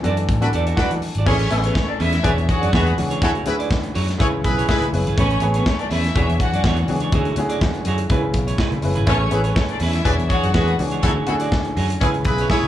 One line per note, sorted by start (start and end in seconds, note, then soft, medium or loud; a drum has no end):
0.00 0.03 E3 medium
0.00 0.26 E3 medium
0.00 0.03 D4 medium
0.00 0.26 D4 medium
0.00 0.04 F#4 medium
0.00 0.27 F#4 medium
0.00 0.04 A4 loud
0.04 0.29 F#2 medium
0.04 0.18 F#4 medium
0.04 0.27 A4 medium
0.04 0.18 A4 medium
0.04 0.17 D5 medium
0.04 closed hi-hat medium
0.17 muted clean electric guitar stroke soft
0.17 closed hi-hat soft
0.29 0.47 A2 medium
0.29 muted clean electric guitar stroke soft
0.29 kick loud
0.29 closed hi-hat medium
0.41 0.94 E3 medium
0.41 0.95 D4 medium
0.41 0.49 D4 medium
0.41 0.49 F#4 medium
0.41 0.95 F#4 medium
0.41 0.95 A4 loud
0.41 0.49 B4 loud
0.41 muted clean electric guitar stroke soft
0.41 closed hi-hat medium
0.53 0.72 E2 loud
0.53 0.67 F#4 medium
0.53 0.67 A4 loud
0.53 0.67 D5 loud
0.53 closed hi-hat medium
0.67 0.76 F#4 medium
0.67 0.76 A4 medium
0.67 0.76 E5 medium
0.67 closed hi-hat soft
0.77 0.93 D4 medium
0.77 0.93 F#4 loud
0.77 0.92 F#4 medium
0.77 0.92 A4 medium
0.77 0.93 B4 loud
0.77 0.92 D5 medium
0.77 kick loud
0.77 snare loud
0.91 0.99 E3 medium
0.91 muted clean electric guitar stroke soft
0.91 closed hi-hat medium
1.02 muted clean electric guitar stroke soft
1.02 open hi-hat medium
1.15 1.24 G#1 medium
1.15 1.26 D5 medium
1.15 closed hi-hat medium
1.19 1.27 F#4 medium
1.19 1.26 A4 medium
1.26 1.45 A1 loud
1.26 1.42 A3 medium
1.26 1.45 C#4 loud
1.26 1.34 C#4 loud
1.26 1.50 C#4 medium
1.26 1.34 E4 medium
1.26 1.42 G#4 medium
1.26 1.34 G#4 loud
1.26 1.50 G#4 medium
1.26 1.42 B4 medium
1.26 1.46 C#5 loud
1.26 1.43 C#5 loud
1.26 kick loud
1.26 crash loud
1.30 1.51 B4 medium
1.39 closed hi-hat soft
1.50 1.69 A1 loud
1.50 2.13 A3 medium
1.50 1.61 C#4 medium
1.50 1.61 E4 medium
1.50 2.13 G#4 medium
1.50 1.61 A4 medium
1.50 2.13 B4 medium
1.50 2.13 E5 loud
1.50 muted clean electric guitar stroke medium
1.50 closed hi-hat medium
1.63 1.73 B3 medium
1.63 1.75 C#4 soft
1.63 1.74 G#4 medium
1.63 1.72 B4 medium
1.63 1.74 C#5 medium
1.63 closed hi-hat soft
1.74 1.85 C#4 medium
1.74 1.85 C#5 loud
1.74 muted clean electric guitar stroke medium
1.74 kick loud
1.74 snare loud
1.87 1.97 D4 medium
1.87 1.97 D5 loud
1.87 muted clean electric guitar stroke soft
2.00 2.18 E2 loud
2.00 2.13 C#4 loud
2.00 2.46 E4 medium
2.00 2.14 G#4 loud
2.00 2.13 B4 loud
2.00 2.46 E5 loud
2.00 open hi-hat medium
2.13 muted clean electric guitar stroke soft
2.13 snare soft
2.13 closed hi-hat medium
2.23 2.34 E1 loud
2.23 2.83 E3 medium
2.23 2.83 D4 medium
2.23 2.39 D4 medium
2.23 2.83 F#4 medium
2.23 2.32 G#4 medium
2.23 2.83 G#4 medium
2.23 2.38 G#4 medium
2.23 2.31 B4 loud
2.23 2.30 C5 medium
2.23 2.37 C#5 loud
2.23 2.31 D5 medium
2.23 kick loud
2.23 closed hi-hat medium
2.30 2.86 C#5 medium
2.37 2.45 E2 loud
2.37 muted clean electric guitar stroke soft
2.37 closed hi-hat soft
2.48 2.94 F#4 medium
2.48 2.68 F#4 medium
2.48 2.69 G#4 medium
2.48 2.69 C#5 loud
2.48 2.94 F#5 loud
2.48 muted clean electric guitar stroke soft
2.48 kick loud
2.48 closed hi-hat medium
2.61 2.70 F#2 medium
2.61 2.72 D4 medium
2.61 2.72 G#4 medium
2.61 2.71 D5 medium
2.61 closed hi-hat soft
2.73 2.92 E2 loud
2.73 2.87 D4 medium
2.73 2.93 F#4 loud
2.73 2.86 G#4 medium
2.73 2.93 G#4 loud
2.73 2.93 B4 loud
2.73 2.85 C#5 medium
2.73 kick loud
2.73 snare loud
2.86 muted clean electric guitar stroke soft
2.86 closed hi-hat soft
2.98 3.16 C#2 medium
2.98 3.13 E3 medium
2.98 3.13 D4 medium
2.98 3.13 F#4 medium
2.98 3.14 G#4 medium
2.98 3.14 C#5 medium
2.98 muted clean electric guitar stroke soft
2.98 open hi-hat medium
3.10 3.21 D4 medium
3.10 3.20 G#4 medium
3.10 3.20 C#5 medium
3.10 closed hi-hat medium
3.21 3.40 D2 loud
3.21 3.37 D3 medium
3.21 3.38 C#4 medium
3.21 3.38 E4 medium
3.21 3.30 E4 loud
3.21 3.38 F#4 medium
3.21 3.45 F#4 medium
3.21 3.30 F#4 loud
3.21 3.45 G#4 medium
3.21 3.38 G#4 loud
3.21 3.30 A4 loud
3.21 3.45 C#5 loud
3.21 kick loud
3.21 closed hi-hat medium
3.35 closed hi-hat soft
3.46 3.65 D2 loud
3.46 4.08 D3 medium
3.46 4.08 C#4 medium
3.46 4.08 E4 medium
3.46 3.55 E4 medium
3.46 4.08 F#4 medium
3.46 3.55 G#4 medium
3.46 4.09 B4 loud
3.46 3.55 B4 loud
3.46 muted clean electric guitar stroke soft
3.46 closed hi-hat medium
3.59 3.69 F#4 soft
3.59 3.69 G#4 medium
3.59 3.69 D5 medium
3.59 closed hi-hat medium
3.70 muted clean electric guitar stroke soft
3.70 kick loud
3.70 snare loud
3.83 muted clean electric guitar stroke medium
3.83 closed hi-hat soft
3.95 4.14 F#2 medium
3.95 4.09 F#4 medium
3.95 4.07 G#4 medium
3.95 4.06 C#5 loud
3.95 open hi-hat medium
4.08 muted clean electric guitar stroke soft
4.08 snare soft
4.08 closed hi-hat medium
4.18 4.45 C#2 loud
4.18 4.78 C#3 medium
4.18 4.79 C#4 medium
4.18 4.33 E4 medium
4.18 4.79 E4 medium
4.18 4.28 E4 medium
4.18 4.33 G#4 medium
4.18 4.28 G#4 medium
4.18 4.32 B4 loud
4.18 4.79 B4 medium
4.18 4.28 C#5 loud
4.18 kick loud
4.18 closed hi-hat medium
4.33 muted clean electric guitar stroke soft
4.44 4.63 B1 medium
4.44 4.64 E4 loud
4.44 4.64 G#4 loud
4.44 4.64 B4 loud
4.44 muted clean electric guitar stroke soft
4.44 kick loud
4.44 closed hi-hat medium
4.58 4.67 E4 medium
4.58 4.67 G#4 medium
4.58 4.67 C#5 medium
4.58 closed hi-hat medium
4.69 4.82 E4 medium
4.69 4.88 E4 loud
4.69 4.88 G#4 loud
4.69 4.83 G#4 medium
4.69 4.88 B4 loud
4.69 4.82 B4 medium
4.69 kick loud
4.69 snare loud
4.81 4.90 C#2 medium
4.81 muted clean electric guitar stroke soft
4.81 closed hi-hat soft
4.93 5.06 F#1 medium
4.93 5.09 C#3 medium
4.93 5.09 C#4 medium
4.93 5.09 E4 medium
4.93 5.09 B4 medium
4.93 muted clean electric guitar stroke soft
4.93 open hi-hat medium
5.06 5.14 G#1 medium
5.06 5.17 E4 medium
5.06 5.16 G#4 medium
5.06 5.16 B4 medium
5.06 closed hi-hat medium
5.17 5.36 A1 loud
5.17 5.34 A3 medium
5.17 5.37 C#4 loud
5.17 5.41 C#4 medium
5.17 5.34 G#4 medium
5.17 5.41 G#4 medium
5.17 5.34 B4 medium
5.17 5.41 B4 loud
5.17 5.37 C#5 loud
5.17 5.34 C#5 loud
5.17 kick loud
5.17 closed hi-hat medium
5.30 closed hi-hat soft
5.40 5.60 A1 loud
5.40 6.03 A3 medium
5.40 6.04 G#4 medium
5.40 6.04 B4 medium
5.40 6.04 C#5 loud
5.40 closed hi-hat medium
5.45 muted clean electric guitar stroke soft
5.54 5.64 B3 medium
5.54 5.65 C#4 medium
5.54 5.65 G#4 medium
5.54 5.64 B4 medium
5.54 5.64 C#5 medium
5.54 closed hi-hat soft
5.66 5.77 C#4 medium
5.66 5.77 C#5 loud
5.66 muted clean electric guitar stroke soft
5.66 kick loud
5.66 snare loud
5.79 5.88 D4 medium
5.79 5.89 D5 loud
5.79 muted clean electric guitar stroke soft
5.79 closed hi-hat soft
5.90 6.09 E2 medium
5.90 6.04 C#4 medium
5.90 6.36 E4 medium
5.90 6.05 G#4 medium
5.90 6.03 B4 medium
5.90 6.36 E5 loud
5.90 open hi-hat medium
6.04 muted clean electric guitar stroke medium
6.04 snare soft
6.04 closed hi-hat medium
6.16 6.25 E1 loud
6.16 6.75 E3 medium
6.16 6.29 D4 medium
6.16 6.75 D4 medium
6.16 6.75 F#4 medium
6.16 6.29 G#4 medium
6.16 6.75 G#4 medium
6.16 6.29 C#5 medium
6.16 6.75 C#5 medium
6.16 kick loud
6.16 closed hi-hat medium
6.28 6.37 E2 loud
6.28 muted clean electric guitar stroke soft
6.28 closed hi-hat soft
6.39 6.85 F#4 medium
6.39 6.85 F#5 loud
6.39 muted clean electric guitar stroke soft
6.39 kick loud
6.39 closed hi-hat medium
6.53 6.61 F#2 medium
6.53 6.63 D4 soft
6.53 6.63 G#4 medium
6.53 6.63 D5 medium
6.53 closed hi-hat medium
6.64 6.83 E2 loud
6.64 6.78 D4 medium
6.64 6.78 G#4 medium
6.64 6.77 C#5 medium
6.64 kick loud
6.64 snare loud
6.76 muted clean electric guitar stroke soft
6.76 closed hi-hat soft
6.88 7.06 C#2 medium
6.88 7.04 E3 medium
6.88 7.04 D4 medium
6.88 7.04 F#4 medium
6.88 7.05 G#4 medium
6.88 7.05 C#5 medium
6.88 muted clean electric guitar stroke soft
6.88 open hi-hat medium
7.00 7.12 D4 medium
7.00 7.11 G#4 medium
7.00 7.11 C#5 medium
7.00 closed hi-hat medium
7.12 7.31 D2 loud
7.12 7.29 D3 medium
7.12 7.29 C#4 medium
7.12 7.29 E4 medium
7.12 7.36 F#4 loud
7.12 7.29 F#4 medium
7.12 7.36 G#4 loud
7.12 7.29 G#4 loud
7.12 7.36 C#5 medium
7.12 kick loud
7.12 closed hi-hat medium
7.25 closed hi-hat soft
7.36 7.55 D2 loud
7.36 7.99 D3 loud
7.36 7.62 C#4 medium
7.36 7.62 E4 medium
7.36 7.60 F#4 medium
7.36 7.63 G#4 loud
7.36 muted clean electric guitar stroke soft
7.36 closed hi-hat medium
7.49 7.60 F#4 medium
7.49 7.60 G#4 medium
7.49 7.59 D5 medium
7.49 closed hi-hat medium
7.61 7.85 D4 medium
7.61 7.85 F#4 medium
7.61 muted clean electric guitar stroke soft
7.61 kick loud
7.61 snare loud
7.74 muted clean electric guitar stroke medium
7.74 closed hi-hat soft
7.85 8.04 F#2 medium
7.85 8.09 E4 medium
7.85 8.00 F#4 medium
7.85 8.32 G#4 medium
7.85 7.99 G#4 medium
7.85 7.98 C#5 medium
7.85 closed hi-hat medium
7.98 muted clean electric guitar stroke soft
7.98 closed hi-hat medium
8.10 8.34 C#2 loud
8.10 8.69 C#3 medium
8.10 8.70 C#4 medium
8.10 8.24 E4 medium
8.10 8.70 E4 medium
8.10 8.24 G#4 medium
8.10 8.70 B4 medium
8.10 8.22 B4 medium
8.10 kick loud
8.10 closed hi-hat medium
8.23 muted clean electric guitar stroke soft
8.34 8.53 B1 loud
8.34 muted clean electric guitar stroke soft
8.34 kick loud
8.34 closed hi-hat medium
8.47 8.58 E4 medium
8.47 8.57 G#4 medium
8.47 8.57 C#5 medium
8.47 closed hi-hat medium
8.58 8.73 E4 medium
8.58 8.71 G#4 loud
8.58 8.71 B4 loud
8.58 kick loud
8.58 snare loud
8.72 8.81 C#2 medium
8.72 muted clean electric guitar stroke soft
8.72 closed hi-hat soft
8.82 8.97 F#1 loud
8.82 8.99 C#3 medium
8.82 8.99 C#4 medium
8.82 9.00 E4 medium
8.82 9.00 B4 medium
8.82 muted clean electric guitar stroke soft
8.82 open hi-hat medium
8.95 9.05 G#1 medium
8.95 9.06 E4 medium
8.95 9.06 G#4 medium
8.95 9.06 B4 medium
8.95 closed hi-hat medium
9.06 9.26 A1 loud
9.06 9.23 A3 medium
9.06 9.30 C#4 medium
9.06 9.15 C#4 loud
9.06 9.28 C#4 loud
9.06 9.15 E4 loud
9.06 9.24 G#4 medium
9.06 9.30 G#4 medium
9.06 9.15 A4 loud
9.06 9.24 B4 medium
9.06 9.31 B4 loud
9.06 9.28 C#5 loud
9.06 9.24 C#5 loud
9.06 kick loud
9.06 closed hi-hat medium
9.31 9.51 A1 loud
9.31 9.93 A3 medium
9.31 9.40 E4 medium
9.31 9.94 G#4 medium
9.31 9.40 G#4 medium
9.31 9.94 B4 medium
9.31 9.40 B4 medium
9.31 9.94 C#5 loud
9.31 muted clean electric guitar stroke medium
9.31 closed hi-hat medium
9.44 9.54 B3 medium
9.44 9.55 C#4 medium
9.44 9.55 G#4 medium
9.44 9.54 B4 medium
9.44 9.54 C#5 medium
9.44 closed hi-hat medium
9.56 9.67 C#4 medium
9.56 9.67 C#5 medium
9.56 muted clean electric guitar stroke medium
9.56 kick loud
9.56 snare loud
9.69 9.79 D4 medium
9.69 9.79 D5 loud
9.69 muted clean electric guitar stroke medium
9.69 closed hi-hat soft
9.80 9.99 E2 medium
9.80 9.95 C#4 medium
9.80 10.27 E4 medium
9.80 9.95 G#4 medium
9.80 9.94 B4 medium
9.80 10.27 E5 loud
9.80 open hi-hat medium
9.93 muted clean electric guitar stroke soft
9.93 snare soft
9.93 closed hi-hat medium
10.05 10.15 E1 medium
10.05 10.65 E3 medium
10.05 10.65 D4 medium
10.05 10.65 F#4 medium
10.05 10.13 G#4 loud
10.05 10.65 G#4 medium
10.05 10.13 B4 medium
10.05 10.65 C#5 loud
10.05 10.13 D5 loud
10.05 kick loud
10.05 closed hi-hat medium
10.19 10.27 E2 loud
10.19 muted clean electric guitar stroke soft
10.19 closed hi-hat soft
10.29 10.44 D4 medium
10.29 10.49 F#4 loud
10.29 10.76 F#4 medium
10.29 10.49 G#4 medium
10.29 10.44 G#4 medium
10.29 10.49 C#5 loud
10.29 10.43 C#5 medium
10.29 10.76 F#5 loud
10.29 kick loud
10.29 closed hi-hat medium
10.43 10.52 F#2 medium
10.43 muted clean electric guitar stroke medium
10.43 closed hi-hat medium
10.54 10.73 E2 medium
10.54 10.69 D4 medium
10.54 10.74 F#4 loud
10.54 10.74 G#4 medium
10.54 10.69 G#4 medium
10.54 10.74 B4 loud
10.54 10.68 C#5 loud
10.54 kick loud
10.54 snare loud
10.68 muted clean electric guitar stroke soft
10.68 closed hi-hat soft
10.79 10.98 C#2 medium
10.79 10.95 E3 medium
10.79 10.95 D4 medium
10.79 10.95 F#4 medium
10.79 10.95 G#4 medium
10.79 10.95 C#5 medium
10.79 muted clean electric guitar stroke soft
10.79 open hi-hat medium
10.91 11.02 D4 medium
10.91 11.02 G#4 medium
10.91 11.01 C#5 medium
10.91 closed hi-hat soft
11.03 11.22 D2 loud
11.03 11.19 D3 medium
11.03 11.19 C#4 medium
11.03 11.11 E4 loud
11.03 11.19 E4 medium
11.03 11.11 F#4 loud
11.03 11.26 F#4 loud
11.03 11.20 F#4 medium
11.03 11.26 G#4 loud
11.03 11.20 G#4 medium
11.03 11.11 A4 loud
11.03 11.27 C#5 loud
11.03 kick loud
11.03 closed hi-hat medium
11.27 11.47 D2 medium
11.27 11.90 D3 loud
11.27 11.90 C#4 medium
11.27 11.35 E4 medium
11.27 11.90 E4 medium
11.27 11.35 F#4 loud
11.27 11.90 F#4 medium
11.27 11.90 G#4 loud
11.27 11.36 A4 loud
11.27 muted clean electric guitar stroke soft
11.27 closed hi-hat medium
11.40 11.51 F#4 medium
11.40 11.51 G#4 medium
11.40 11.50 D5 medium
11.40 closed hi-hat medium
11.52 kick loud
11.52 snare loud
11.65 muted clean electric guitar stroke medium
11.65 closed hi-hat soft
11.77 11.95 F#2 medium
11.77 11.90 F#4 medium
11.77 11.90 G#4 medium
11.77 11.89 C#5 medium
11.77 open hi-hat medium
11.90 muted clean electric guitar stroke medium
11.90 closed hi-hat medium
12.01 12.25 C#2 loud
12.01 12.60 C#3 medium
12.01 12.09 C#4 medium
12.01 12.61 C#4 medium
12.01 12.15 E4 medium
12.01 12.09 E4 medium
12.01 12.61 E4 medium
12.01 12.08 G#4 loud
12.01 12.14 G#4 loud
12.01 12.61 B4 loud
12.01 12.13 B4 medium
12.01 kick loud
12.01 closed hi-hat medium
12.14 muted clean electric guitar stroke soft
12.14 closed hi-hat soft
12.25 12.44 B1 loud
12.25 12.45 E4 loud
12.25 12.45 G#4 loud
12.25 12.45 B4 loud
12.25 muted clean electric guitar stroke soft
12.25 kick loud
12.25 closed hi-hat medium
12.38 12.50 E4 medium
12.38 12.50 G#4 medium
12.38 12.49 C#5 medium
12.38 closed hi-hat soft
12.50 12.68 E4 loud
12.50 12.65 E4 medium
12.50 12.68 G#4 loud
12.50 12.65 G#4 loud
12.50 12.68 C#5 loud
12.50 kick loud
12.50 snare loud
12.54 12.64 B4 medium
12.63 12.68 C#2 medium